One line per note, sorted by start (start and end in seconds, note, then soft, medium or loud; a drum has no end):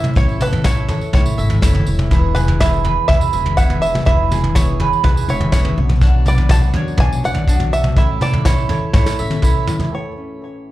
0.00 0.14 A2 medium
0.00 0.64 E3 medium
0.00 0.14 E4 soft
0.00 0.16 E4 medium
0.00 0.14 A4 medium
0.00 0.15 A4 soft
0.00 0.15 C#5 soft
0.00 0.15 E5 medium
0.00 0.41 E5 medium
0.00 mid tom medium
0.15 1.01 A1 medium
0.15 1.12 A2 medium
0.15 0.40 A3 medium
0.15 0.40 E4 medium
0.15 0.64 E4 medium
0.15 0.41 A4 medium
0.15 0.39 C#5 medium
0.15 0.42 C#5 medium
0.15 kick loud
0.15 floor tom medium
0.29 tambourine soft
0.40 0.64 E4 soft
0.40 0.89 A4 medium
0.40 0.65 A4 soft
0.40 0.66 B4 medium
0.40 0.65 C#5 soft
0.40 mid tom medium
0.40 tambourine medium
0.53 floor tom medium
0.53 tambourine soft
0.64 1.62 E3 medium
0.64 0.90 A3 medium
0.64 1.12 E4 medium
0.64 0.90 E4 medium
0.64 0.89 A4 medium
0.64 1.13 C#5 medium
0.64 0.87 C#5 medium
0.64 kick medium
0.64 snare medium
0.64 mid tom medium
0.64 tambourine medium
0.77 tambourine soft
0.88 1.13 E4 soft
0.88 1.14 A4 soft
0.88 1.13 C#5 soft
0.88 1.87 C#5 medium
0.88 floor tom medium
0.88 tambourine soft
1.01 tambourine soft
1.13 2.08 A2 medium
1.13 1.35 A2 medium
1.13 1.38 A3 soft
1.13 1.61 E4 medium
1.13 1.38 E4 medium
1.13 1.37 A4 medium
1.13 1.83 C#5 medium
1.13 1.36 C#5 medium
1.13 kick loud
1.13 floor tom medium
1.13 mid tom medium
1.13 tambourine soft
1.26 tambourine medium
1.37 1.60 G#1 medium
1.37 1.61 E4 soft
1.37 1.61 A4 soft
1.37 1.62 C#5 soft
1.37 2.11 E5 medium
1.37 tambourine medium
1.50 floor tom medium
1.50 tambourine soft
1.62 1.84 F#1 medium
1.62 2.12 E3 medium
1.62 1.86 A3 medium
1.62 1.87 E4 medium
1.62 2.10 E4 medium
1.62 1.86 A4 medium
1.62 1.85 C#5 medium
1.62 kick medium
1.62 snare medium
1.62 tambourine medium
1.75 floor tom medium
1.75 tambourine soft
1.86 2.09 E1 medium
1.86 2.11 E4 soft
1.86 2.11 A4 soft
1.86 2.11 C#5 medium
1.86 tambourine medium
1.99 mid tom medium
2.11 2.96 E1 medium
2.11 2.36 E3 medium
2.11 2.36 B3 medium
2.11 2.59 E4 medium
2.11 2.36 E4 medium
2.11 2.36 G#4 medium
2.11 2.35 B4 medium
2.11 kick loud
2.11 floor tom medium
2.35 2.60 E4 soft
2.35 3.33 G#4 medium
2.35 2.61 G#4 soft
2.35 2.58 B4 medium
2.35 2.60 B4 medium
2.35 mid tom medium
2.35 tambourine medium
2.48 floor tom medium
2.60 2.84 E3 medium
2.60 2.85 B3 medium
2.60 3.08 E4 medium
2.60 2.85 E4 medium
2.60 2.84 G#4 medium
2.60 2.83 B4 medium
2.60 3.07 E5 medium
2.60 kick loud
2.60 snare medium
2.60 mid tom medium
2.60 tambourine medium
2.73 tambourine soft
2.84 3.08 E4 soft
2.84 3.09 G#4 soft
2.84 3.08 B4 soft
2.84 3.82 B4 medium
2.84 floor tom medium
3.08 3.30 E2 medium
3.08 4.07 B2 medium
3.08 3.57 E4 medium
3.08 3.33 E4 medium
3.08 3.33 G#4 medium
3.08 3.31 B4 medium
3.08 3.54 E5 medium
3.08 kick loud
3.08 floor tom medium
3.08 mid tom medium
3.21 tambourine medium
3.33 3.97 E1 medium
3.33 3.57 E4 soft
3.33 3.57 G#4 soft
3.33 3.57 B4 soft
3.33 4.31 E5 medium
3.33 tambourine medium
3.46 floor tom medium
3.57 3.82 E3 medium
3.57 3.82 B3 medium
3.57 4.06 E4 medium
3.57 3.82 E4 medium
3.57 3.82 G#4 medium
3.57 3.81 B4 medium
3.57 3.80 F#5 loud
3.57 kick medium
3.57 tambourine medium
3.70 floor tom medium
3.82 4.05 E4 soft
3.82 4.05 G#4 soft
3.82 4.05 E5 medium
3.82 tambourine medium
3.95 mid tom medium
4.06 4.91 E1 medium
4.06 4.31 E3 medium
4.06 4.31 B3 medium
4.06 4.31 E4 medium
4.06 4.55 E4 medium
4.06 4.30 G#4 medium
4.06 4.29 B4 medium
4.06 4.57 E5 medium
4.06 kick loud
4.06 floor tom medium
4.30 4.55 E4 soft
4.30 4.55 G#4 medium
4.30 5.04 G#4 medium
4.30 4.55 B4 soft
4.30 mid tom medium
4.30 tambourine medium
4.44 floor tom medium
4.55 4.80 E3 medium
4.55 4.80 B3 medium
4.55 4.80 E4 medium
4.55 5.03 E4 medium
4.55 4.79 G#4 medium
4.55 4.78 B4 medium
4.55 5.05 C#5 medium
4.55 kick loud
4.55 snare medium
4.55 mid tom medium
4.55 tambourine medium
4.69 tambourine soft
4.80 5.03 E4 soft
4.80 5.04 G#4 soft
4.80 5.04 B4 soft
4.80 5.77 B4 medium
4.80 floor tom medium
4.93 tambourine soft
5.04 5.25 E2 medium
5.04 5.28 B2 medium
5.04 5.28 B3 medium
5.04 5.28 E4 medium
5.04 5.53 E4 medium
5.04 5.27 G#4 medium
5.04 5.27 B4 medium
5.04 5.26 B4 medium
5.04 kick loud
5.04 floor tom medium
5.04 mid tom medium
5.17 tambourine medium
5.27 5.71 E1 medium
5.27 5.53 D3 medium
5.27 5.52 E4 soft
5.27 5.52 G#4 soft
5.27 5.52 B4 soft
5.27 5.52 C#5 medium
5.27 5.78 E5 medium
5.27 tambourine medium
5.40 floor tom medium
5.52 5.77 C#3 medium
5.52 5.77 E3 medium
5.52 5.77 B3 medium
5.52 5.77 E4 medium
5.52 5.78 E4 medium
5.52 5.77 G#4 medium
5.52 5.76 B4 medium
5.52 5.87 C#5 medium
5.52 kick medium
5.52 snare medium
5.52 tambourine medium
5.65 floor tom medium
5.76 6.62 B1 loud
5.76 6.75 B2 medium
5.76 6.01 B3 soft
5.76 6.01 D4 soft
5.76 6.01 F#4 soft
5.76 6.01 C#5 soft
5.89 mid tom medium
6.01 6.26 B2 medium
6.01 6.26 F#3 medium
6.01 6.26 B3 medium
6.01 6.26 D4 medium
6.01 6.50 D4 medium
6.01 6.25 F#4 medium
6.01 6.24 C#5 medium
6.01 kick loud
6.01 floor tom medium
6.26 7.23 F#3 medium
6.26 6.49 B3 soft
6.26 6.49 D4 soft
6.26 6.50 F#4 soft
6.26 7.24 B4 medium
6.26 6.49 C#5 medium
6.26 6.52 D5 medium
6.26 mid tom medium
6.26 tambourine medium
6.38 floor tom medium
6.49 6.74 B2 medium
6.49 6.74 F#3 medium
6.49 6.74 B3 medium
6.49 6.74 D4 medium
6.49 6.99 D4 medium
6.49 6.74 F#4 medium
6.49 6.73 C#5 medium
6.49 7.00 A5 loud
6.49 kick loud
6.49 snare medium
6.49 mid tom medium
6.49 tambourine medium
6.64 tambourine soft
6.74 7.72 F#2 medium
6.74 6.98 B3 soft
6.74 6.98 D4 soft
6.74 6.99 F#4 soft
6.74 6.99 C#5 medium
6.74 7.73 C#5 medium
6.74 floor tom medium
6.88 tambourine soft
6.98 7.20 B2 loud
6.98 7.23 B3 soft
6.98 7.23 D4 medium
6.98 7.47 D4 medium
6.98 7.22 F#4 medium
6.98 7.21 C#5 medium
6.98 7.22 G#5 medium
6.98 kick loud
6.98 floor tom medium
6.98 mid tom medium
7.12 tambourine medium
7.23 7.88 B1 medium
7.23 7.70 F#3 medium
7.23 7.47 B3 soft
7.23 7.48 D4 soft
7.23 7.48 F#4 soft
7.23 7.47 C#5 soft
7.23 7.97 D5 medium
7.23 7.73 F#5 medium
7.23 tambourine medium
7.35 floor tom medium
7.47 7.72 B2 medium
7.47 7.72 F#3 medium
7.47 7.72 B3 medium
7.47 7.97 D4 medium
7.47 7.72 D4 medium
7.47 7.71 F#4 medium
7.47 7.70 C#5 medium
7.47 kick medium
7.47 tambourine medium
7.60 floor tom medium
7.71 7.97 B2 medium
7.71 7.97 B3 soft
7.71 7.97 D4 soft
7.71 7.97 F#4 soft
7.71 7.96 C#5 medium
7.71 7.95 E5 medium
7.71 tambourine medium
7.84 mid tom medium
7.96 8.82 A1 medium
7.96 8.92 A2 medium
7.96 8.21 A3 medium
7.96 8.44 E4 medium
7.96 8.22 E4 medium
7.96 8.21 A4 medium
7.96 8.20 C#5 medium
7.96 8.22 E5 medium
7.96 kick medium
7.96 floor tom medium
7.96 tambourine soft
8.21 8.45 E4 soft
8.21 9.19 A4 medium
8.21 8.46 C#5 soft
8.21 8.45 D5 medium
8.21 mid tom medium
8.21 tambourine medium
8.33 floor tom medium
8.44 9.42 E3 medium
8.44 8.70 A3 medium
8.44 8.93 E4 medium
8.44 8.70 E4 medium
8.44 8.70 A4 medium
8.44 8.94 C#5 medium
8.44 8.68 C#5 medium
8.44 kick loud
8.44 snare medium
8.44 mid tom medium
8.44 tambourine medium
8.58 tambourine soft
8.69 8.94 E4 soft
8.69 8.95 A4 soft
8.69 9.68 C#5 medium
8.69 8.94 C#5 medium
8.69 floor tom medium
8.69 tambourine soft
8.93 9.89 A2 medium
8.93 9.16 A2 medium
8.93 9.19 A3 medium
8.93 9.42 E4 medium
8.93 9.20 E4 medium
8.93 9.19 A4 medium
8.93 9.64 C#5 medium
8.93 9.17 C#5 medium
8.93 kick loud
8.93 snare medium
9.06 snare medium
9.06 tambourine medium
9.19 9.84 A1 medium
9.19 9.42 E4 soft
9.19 9.43 A4 soft
9.19 9.43 C#5 soft
9.19 9.93 E5 medium
9.19 tambourine medium
9.31 high tom medium
9.31 tambourine soft
9.42 10.41 E3 medium
9.42 9.68 A3 medium
9.42 9.92 E4 medium
9.42 9.68 E4 medium
9.42 9.68 A4 medium
9.42 9.66 C#5 medium
9.42 kick medium
9.42 mid tom medium
9.42 tambourine medium
9.67 9.94 E4 soft
9.67 9.93 A4 soft
9.67 9.92 C#5 medium
9.67 floor tom medium
9.67 tambourine medium
9.79 floor tom medium
9.79 tambourine soft
9.91 10.72 A2 soft
9.91 10.72 A4 soft
9.91 10.72 C#5 soft
10.17 10.72 C#4 soft
10.42 10.72 E3 soft